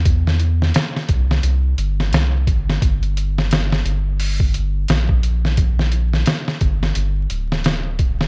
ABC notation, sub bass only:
X:1
M:4/4
L:1/8
Q:"Swing 16ths" 1/4=87
K:Gdor
V:1 name="Sub bass" clef=bass
E,,2 z C,, C,, G,,, C,, G,,, | G,,,3 G,,,3 B,,,2- | B,,,2 z G,,, G,,, D,,,3 |]